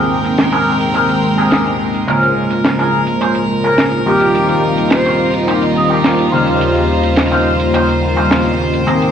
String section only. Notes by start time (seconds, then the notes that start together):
Already playing: G#3 C4 A#4 G5
2.08 A#4
4.06 G3 D#4 F4
6.32 C5
8.87 G#3 A#4 G5